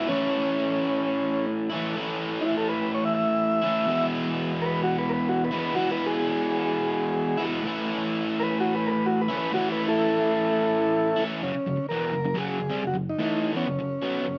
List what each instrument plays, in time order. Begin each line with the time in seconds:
Already playing: overdriven electric guitar E4
0.05 overdriven electric guitar A2 E3 A3, transistor combo organ C#4
0.11 overdriven electric guitar C#4 E4
1.70 overdriven electric guitar C#4 E4
1.74 overdriven electric guitar A2 E3 A3
1.96 overdriven electric guitar A2 E3 A3 C#4
2.00 overdriven electric guitar E4
2.41 transistor combo organ D#4
2.45 transistor combo organ E4
2.57 transistor combo organ A4
2.69 transistor combo organ B4
2.94 transistor combo organ C#5
3.05 transistor combo organ E5
3.15 transistor combo organ E5
3.61 overdriven electric guitar A3 C#4 E4
3.66 overdriven electric guitar A2 E3
3.85 overdriven electric guitar E2 B2 E3 G#3
3.91 overdriven electric guitar B3 E4
4.62 transistor combo organ A#4
4.66 transistor combo organ B4
4.83 transistor combo organ F#4
4.98 transistor combo organ B4
5.09 transistor combo organ A#4
5.14 transistor combo organ B4
5.29 transistor combo organ F#4
5.45 transistor combo organ B4
5.51 overdriven electric guitar B2 E3 G#3 B3 E4
5.56 overdriven electric guitar E2, transistor combo organ B4
5.73 overdriven electric guitar E2 B2 E3 G#3, transistor combo organ F#4
5.78 overdriven electric guitar B3 E4
5.91 transistor combo organ B4
6.06 transistor combo organ G#4
7.37 overdriven electric guitar G#3 B3 E4
7.42 overdriven electric guitar E2 B2 E3
7.62 overdriven electric guitar A2 E3 A3
7.67 overdriven electric guitar C#4 E4
8.40 transistor combo organ A#4 B4
8.60 transistor combo organ F#4
8.75 transistor combo organ B4
8.87 transistor combo organ A#4
8.92 transistor combo organ B4
9.06 transistor combo organ F#4
9.21 transistor combo organ B4
9.28 overdriven electric guitar A3 C#4 E4
9.33 overdriven electric guitar A2 E3
9.37 transistor combo organ B4
9.52 overdriven electric guitar A2 E3 A3 C#4, transistor combo organ F#4
9.57 overdriven electric guitar E4
9.72 transistor combo organ B4
9.88 transistor combo organ E4 A4
11.16 overdriven electric guitar A3 C#4 E4
11.21 overdriven electric guitar A2 E3
11.42 overdriven electric guitar F#2 C#3, transistor combo organ C#4
11.54 muted overdriven electric guitar stroke
11.67 overdriven electric guitar F#2 C#3
11.77 muted overdriven electric guitar stroke
11.89 overdriven electric guitar E2 B2, transistor combo organ A#4
11.93 overdriven electric guitar E3
12.12 overdriven electric guitar F#2 C#3
12.25 overdriven electric guitar F#2 C#3
12.35 overdriven electric guitar F#2 C#3 F#3, transistor combo organ G#4
12.60 overdriven electric guitar F#2 C#3
12.70 overdriven electric guitar C3 G3
12.83 overdriven electric guitar F#2 C#3, transistor combo organ F#4
12.94 overdriven electric guitar F#2 C#3
13.09 transistor combo organ D#4
13.19 overdriven electric guitar A2 E3 A3
13.54 overdriven electric guitar E3 B3, transistor combo organ C#4
13.66 overdriven electric guitar F#2 C#3
13.79 overdriven electric guitar F#2 C#3
14.02 overdriven electric guitar B2 F#3 B3
14.25 overdriven electric guitar F#2 C#3